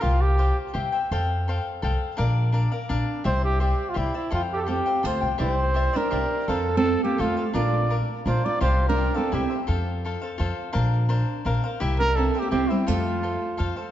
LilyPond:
<<
  \new Staff \with { instrumentName = "Cavaquinho" } { \time 3/4 \key f \major \tempo 4 = 168 <f' g' c'' f''>4 <f' g' c'' f''>4 <g' c'' e'' g''>8 <c'' e'' g''>8 | <a' c'' f'' g''>4 <a' c'' f'' g''>4 <a' c'' f'' g''>4 | <d' bes' d'' f''>4 <d' bes' d'' f''>8 <bes' d'' f''>8 <d' bes' d'' f''>4 | <g' c'' d'' e''>4 <g' c'' d'' e''>4 <g' c'' d'' e''>8 <c'' d'' e''>8 |
<a' c'' f'' g''>4 <a' c'' f'' g''>8 <c'' f'' g''>8 <a' c'' f'' g''>8 <c'' f'' g''>8 | <g' c'' d'' e''>4 <g' c'' d'' e''>8 <c'' d'' e''>8 <g' c'' d'' e''>4 | <f' a' c'' f''>4 <f' a' c'' f''>4 <f' a' c'' f''>8 <a' c'' f''>8 | <d' bes' d'' f''>4 <d' bes' d'' f''>4 <d' bes' d'' f''>4 |
<f' g' c'' f''>4 <f' g' c'' f''>8 <g' c'' f''>8 <e' g' c'' e''>8 <g' c'' e''>8 | <f' a' c'' f''>4 <f' a' c'' f''>8 <a' c'' f''>8 <f' a' c'' f''>4 | <d' bes' c'' f''>4 <d' bes' c'' f''>4 <d' bes' c'' f''>8 <bes' c'' f''>8 | <e' g' c'' e''>4 <e' g' c'' e''>8 <g' c'' e''>8 <e' g' c'' e''>8 <g' c'' e''>8 |
<f' a' c'' f''>4 <f' a' c'' f''>4 <f' a' c'' f''>8 <a' c'' f''>8 | }
  \new Staff \with { instrumentName = "Trumpet" } { \time 3/4 \key f \major f'8 g'4 r4. | r2. | r2. | c''8 g'8 g'8. f'16 e'8 e'8 |
f'8 g'32 a'32 g'16 g'4 c''8. r16 | c''4. bes'4. | a'8. a'8. g'8 f'8. r16 | d''4~ d''16 r8. c''8 d''8 |
c''8. bes'8. a'8 g'8. r16 | r2. | r2. | r8 bes'8 \tuplet 3/2 { a'4 g'8 } g'8 e'8 |
f'2~ f'8 r8 | }
  \new Staff \with { instrumentName = "Nylon-string guitar" } { \time 3/4 \key f \major r2. | r2. | r2. | r2. |
r4 c'4 f'8. r16 | e'4. d'4. | c'8. c'8. bes8 a8. r16 | f'4~ f'16 r8. f'8 f'8 |
f'8. d'8. c'8 c'8. r16 | r2. | r2. | r8 d'8 \tuplet 3/2 { c'4 bes8 } c'8 g8 |
a2~ a8 r8 | }
  \new Staff \with { instrumentName = "Upright bass" } { \clef bass \time 3/4 \key f \major c,2 c,8 r8 | f,2 c,8 r8 | bes,,2 bes,,8 r8 | c,2 c,8 r8 |
f,2 d,8 c,8 | c,2 c,8 r8 | f,2 f,8 r8 | bes,,2 bes,,8 r8 |
c,2 c,8 r8 | f,2 f,8 r8 | bes,,2 bes,,8 r8 | c,2 c,8 r8 |
f,2 f,8 r8 | }
>>